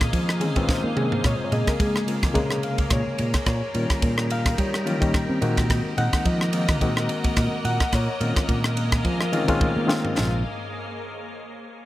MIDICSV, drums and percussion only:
0, 0, Header, 1, 2, 480
1, 0, Start_track
1, 0, Key_signature, -5, "minor"
1, 0, Tempo, 557621
1, 1073, Time_signature, 4, 2, 24, 8
1, 10203, End_track
2, 0, Start_track
2, 0, Title_t, "Drums"
2, 7, Note_on_c, 9, 36, 86
2, 8, Note_on_c, 9, 51, 59
2, 11, Note_on_c, 9, 37, 78
2, 93, Note_off_c, 9, 36, 0
2, 95, Note_off_c, 9, 51, 0
2, 97, Note_off_c, 9, 37, 0
2, 113, Note_on_c, 9, 36, 72
2, 113, Note_on_c, 9, 51, 58
2, 199, Note_off_c, 9, 36, 0
2, 199, Note_off_c, 9, 51, 0
2, 250, Note_on_c, 9, 37, 76
2, 336, Note_off_c, 9, 37, 0
2, 351, Note_on_c, 9, 51, 58
2, 437, Note_off_c, 9, 51, 0
2, 481, Note_on_c, 9, 51, 53
2, 484, Note_on_c, 9, 36, 75
2, 567, Note_off_c, 9, 51, 0
2, 570, Note_off_c, 9, 36, 0
2, 591, Note_on_c, 9, 36, 101
2, 594, Note_on_c, 9, 38, 57
2, 677, Note_off_c, 9, 36, 0
2, 680, Note_off_c, 9, 38, 0
2, 833, Note_on_c, 9, 45, 78
2, 919, Note_off_c, 9, 45, 0
2, 965, Note_on_c, 9, 43, 69
2, 1051, Note_off_c, 9, 43, 0
2, 1068, Note_on_c, 9, 36, 79
2, 1068, Note_on_c, 9, 51, 58
2, 1071, Note_on_c, 9, 37, 72
2, 1154, Note_off_c, 9, 51, 0
2, 1155, Note_off_c, 9, 36, 0
2, 1157, Note_off_c, 9, 37, 0
2, 1308, Note_on_c, 9, 51, 56
2, 1394, Note_off_c, 9, 51, 0
2, 1441, Note_on_c, 9, 36, 78
2, 1442, Note_on_c, 9, 51, 61
2, 1445, Note_on_c, 9, 37, 78
2, 1527, Note_off_c, 9, 36, 0
2, 1528, Note_off_c, 9, 51, 0
2, 1531, Note_off_c, 9, 37, 0
2, 1549, Note_on_c, 9, 36, 102
2, 1549, Note_on_c, 9, 51, 60
2, 1635, Note_off_c, 9, 36, 0
2, 1636, Note_off_c, 9, 51, 0
2, 1685, Note_on_c, 9, 37, 83
2, 1771, Note_off_c, 9, 37, 0
2, 1789, Note_on_c, 9, 51, 61
2, 1875, Note_off_c, 9, 51, 0
2, 1918, Note_on_c, 9, 51, 59
2, 1919, Note_on_c, 9, 36, 82
2, 1921, Note_on_c, 9, 37, 78
2, 2004, Note_off_c, 9, 51, 0
2, 2005, Note_off_c, 9, 36, 0
2, 2007, Note_off_c, 9, 37, 0
2, 2025, Note_on_c, 9, 36, 77
2, 2025, Note_on_c, 9, 51, 61
2, 2111, Note_off_c, 9, 36, 0
2, 2111, Note_off_c, 9, 51, 0
2, 2157, Note_on_c, 9, 37, 77
2, 2243, Note_off_c, 9, 37, 0
2, 2265, Note_on_c, 9, 51, 51
2, 2351, Note_off_c, 9, 51, 0
2, 2394, Note_on_c, 9, 51, 58
2, 2397, Note_on_c, 9, 36, 74
2, 2480, Note_off_c, 9, 51, 0
2, 2483, Note_off_c, 9, 36, 0
2, 2498, Note_on_c, 9, 51, 54
2, 2501, Note_on_c, 9, 37, 76
2, 2504, Note_on_c, 9, 36, 106
2, 2584, Note_off_c, 9, 51, 0
2, 2587, Note_off_c, 9, 37, 0
2, 2590, Note_off_c, 9, 36, 0
2, 2741, Note_on_c, 9, 51, 60
2, 2827, Note_off_c, 9, 51, 0
2, 2872, Note_on_c, 9, 51, 59
2, 2875, Note_on_c, 9, 37, 79
2, 2877, Note_on_c, 9, 36, 73
2, 2959, Note_off_c, 9, 51, 0
2, 2961, Note_off_c, 9, 37, 0
2, 2963, Note_off_c, 9, 36, 0
2, 2981, Note_on_c, 9, 51, 59
2, 2983, Note_on_c, 9, 36, 84
2, 2983, Note_on_c, 9, 37, 81
2, 3067, Note_off_c, 9, 51, 0
2, 3069, Note_off_c, 9, 36, 0
2, 3070, Note_off_c, 9, 37, 0
2, 3224, Note_on_c, 9, 51, 52
2, 3310, Note_off_c, 9, 51, 0
2, 3357, Note_on_c, 9, 51, 51
2, 3358, Note_on_c, 9, 36, 74
2, 3359, Note_on_c, 9, 37, 82
2, 3443, Note_off_c, 9, 51, 0
2, 3444, Note_off_c, 9, 36, 0
2, 3445, Note_off_c, 9, 37, 0
2, 3464, Note_on_c, 9, 36, 102
2, 3464, Note_on_c, 9, 51, 57
2, 3550, Note_off_c, 9, 36, 0
2, 3550, Note_off_c, 9, 51, 0
2, 3596, Note_on_c, 9, 37, 85
2, 3682, Note_off_c, 9, 37, 0
2, 3705, Note_on_c, 9, 51, 63
2, 3791, Note_off_c, 9, 51, 0
2, 3837, Note_on_c, 9, 36, 84
2, 3837, Note_on_c, 9, 51, 62
2, 3839, Note_on_c, 9, 37, 90
2, 3923, Note_off_c, 9, 36, 0
2, 3923, Note_off_c, 9, 51, 0
2, 3925, Note_off_c, 9, 37, 0
2, 3945, Note_on_c, 9, 36, 80
2, 3946, Note_on_c, 9, 51, 58
2, 4031, Note_off_c, 9, 36, 0
2, 4032, Note_off_c, 9, 51, 0
2, 4081, Note_on_c, 9, 37, 80
2, 4168, Note_off_c, 9, 37, 0
2, 4191, Note_on_c, 9, 51, 54
2, 4277, Note_off_c, 9, 51, 0
2, 4319, Note_on_c, 9, 36, 76
2, 4324, Note_on_c, 9, 51, 50
2, 4405, Note_off_c, 9, 36, 0
2, 4410, Note_off_c, 9, 51, 0
2, 4426, Note_on_c, 9, 36, 107
2, 4428, Note_on_c, 9, 51, 60
2, 4431, Note_on_c, 9, 37, 82
2, 4512, Note_off_c, 9, 36, 0
2, 4514, Note_off_c, 9, 51, 0
2, 4517, Note_off_c, 9, 37, 0
2, 4665, Note_on_c, 9, 51, 62
2, 4751, Note_off_c, 9, 51, 0
2, 4798, Note_on_c, 9, 36, 76
2, 4800, Note_on_c, 9, 51, 62
2, 4803, Note_on_c, 9, 37, 76
2, 4884, Note_off_c, 9, 36, 0
2, 4886, Note_off_c, 9, 51, 0
2, 4889, Note_off_c, 9, 37, 0
2, 4906, Note_on_c, 9, 36, 85
2, 4909, Note_on_c, 9, 51, 65
2, 4911, Note_on_c, 9, 37, 89
2, 4992, Note_off_c, 9, 36, 0
2, 4995, Note_off_c, 9, 51, 0
2, 4997, Note_off_c, 9, 37, 0
2, 5145, Note_on_c, 9, 51, 59
2, 5231, Note_off_c, 9, 51, 0
2, 5277, Note_on_c, 9, 36, 81
2, 5277, Note_on_c, 9, 51, 64
2, 5279, Note_on_c, 9, 37, 84
2, 5363, Note_off_c, 9, 36, 0
2, 5363, Note_off_c, 9, 51, 0
2, 5366, Note_off_c, 9, 37, 0
2, 5384, Note_on_c, 9, 51, 55
2, 5385, Note_on_c, 9, 36, 100
2, 5470, Note_off_c, 9, 51, 0
2, 5471, Note_off_c, 9, 36, 0
2, 5519, Note_on_c, 9, 37, 79
2, 5605, Note_off_c, 9, 37, 0
2, 5619, Note_on_c, 9, 51, 67
2, 5705, Note_off_c, 9, 51, 0
2, 5754, Note_on_c, 9, 51, 66
2, 5756, Note_on_c, 9, 36, 94
2, 5756, Note_on_c, 9, 37, 91
2, 5840, Note_off_c, 9, 51, 0
2, 5842, Note_off_c, 9, 36, 0
2, 5842, Note_off_c, 9, 37, 0
2, 5864, Note_on_c, 9, 36, 81
2, 5865, Note_on_c, 9, 51, 58
2, 5950, Note_off_c, 9, 36, 0
2, 5951, Note_off_c, 9, 51, 0
2, 5999, Note_on_c, 9, 37, 84
2, 6085, Note_off_c, 9, 37, 0
2, 6103, Note_on_c, 9, 51, 59
2, 6189, Note_off_c, 9, 51, 0
2, 6234, Note_on_c, 9, 51, 56
2, 6237, Note_on_c, 9, 36, 78
2, 6320, Note_off_c, 9, 51, 0
2, 6323, Note_off_c, 9, 36, 0
2, 6339, Note_on_c, 9, 51, 62
2, 6342, Note_on_c, 9, 37, 78
2, 6344, Note_on_c, 9, 36, 105
2, 6425, Note_off_c, 9, 51, 0
2, 6428, Note_off_c, 9, 37, 0
2, 6430, Note_off_c, 9, 36, 0
2, 6583, Note_on_c, 9, 51, 61
2, 6669, Note_off_c, 9, 51, 0
2, 6716, Note_on_c, 9, 51, 55
2, 6718, Note_on_c, 9, 36, 76
2, 6719, Note_on_c, 9, 37, 78
2, 6802, Note_off_c, 9, 51, 0
2, 6804, Note_off_c, 9, 36, 0
2, 6805, Note_off_c, 9, 37, 0
2, 6822, Note_on_c, 9, 51, 64
2, 6824, Note_on_c, 9, 36, 81
2, 6824, Note_on_c, 9, 37, 77
2, 6908, Note_off_c, 9, 51, 0
2, 6910, Note_off_c, 9, 36, 0
2, 6911, Note_off_c, 9, 37, 0
2, 7065, Note_on_c, 9, 51, 58
2, 7151, Note_off_c, 9, 51, 0
2, 7200, Note_on_c, 9, 36, 87
2, 7202, Note_on_c, 9, 51, 57
2, 7205, Note_on_c, 9, 37, 84
2, 7286, Note_off_c, 9, 36, 0
2, 7288, Note_off_c, 9, 51, 0
2, 7291, Note_off_c, 9, 37, 0
2, 7307, Note_on_c, 9, 36, 96
2, 7307, Note_on_c, 9, 51, 53
2, 7393, Note_off_c, 9, 36, 0
2, 7393, Note_off_c, 9, 51, 0
2, 7440, Note_on_c, 9, 37, 89
2, 7526, Note_off_c, 9, 37, 0
2, 7548, Note_on_c, 9, 51, 65
2, 7634, Note_off_c, 9, 51, 0
2, 7679, Note_on_c, 9, 51, 63
2, 7681, Note_on_c, 9, 36, 96
2, 7682, Note_on_c, 9, 37, 92
2, 7765, Note_off_c, 9, 51, 0
2, 7767, Note_off_c, 9, 36, 0
2, 7768, Note_off_c, 9, 37, 0
2, 7787, Note_on_c, 9, 51, 55
2, 7788, Note_on_c, 9, 36, 87
2, 7873, Note_off_c, 9, 51, 0
2, 7874, Note_off_c, 9, 36, 0
2, 7924, Note_on_c, 9, 37, 84
2, 8010, Note_off_c, 9, 37, 0
2, 8031, Note_on_c, 9, 51, 57
2, 8117, Note_off_c, 9, 51, 0
2, 8163, Note_on_c, 9, 51, 56
2, 8164, Note_on_c, 9, 36, 74
2, 8250, Note_off_c, 9, 36, 0
2, 8250, Note_off_c, 9, 51, 0
2, 8273, Note_on_c, 9, 36, 110
2, 8274, Note_on_c, 9, 48, 57
2, 8359, Note_off_c, 9, 36, 0
2, 8360, Note_off_c, 9, 48, 0
2, 8517, Note_on_c, 9, 38, 90
2, 8603, Note_off_c, 9, 38, 0
2, 8648, Note_on_c, 9, 43, 75
2, 8734, Note_off_c, 9, 43, 0
2, 8757, Note_on_c, 9, 43, 93
2, 8760, Note_on_c, 9, 38, 80
2, 8843, Note_off_c, 9, 43, 0
2, 8846, Note_off_c, 9, 38, 0
2, 10203, End_track
0, 0, End_of_file